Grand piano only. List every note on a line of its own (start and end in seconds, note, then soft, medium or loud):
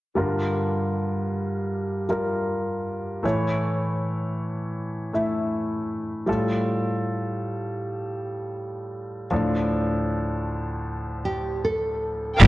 0.15 3.20 G2 soft
0.15 3.20 D3 soft
0.15 2.05 G3 soft
0.15 2.06 F4 soft
0.15 2.06 A#4 soft
2.09 3.23 G3 soft
2.09 3.24 F4 soft
2.09 3.24 A#4 soft
3.23 6.24 A2 soft
3.23 6.24 E3 soft
3.23 5.10 A3 soft
3.23 5.10 E4 soft
3.23 5.11 C#5 soft
5.13 6.27 A3 soft
5.13 6.27 E4 soft
5.13 6.28 E5 soft
6.26 9.28 A2 soft
6.26 9.27 G3 soft
6.26 9.28 F4 soft
6.26 9.28 A4 soft
9.31 12.38 D2 soft
9.31 12.38 A2 soft
9.31 12.37 F3 soft
9.31 12.38 D4 soft
9.31 12.38 A4 soft
12.40 12.47 G2 medium
12.40 12.47 D3 medium
12.40 12.47 G3 medium
12.40 12.47 D4 medium
12.40 12.47 F4 medium
12.40 12.47 A#4 medium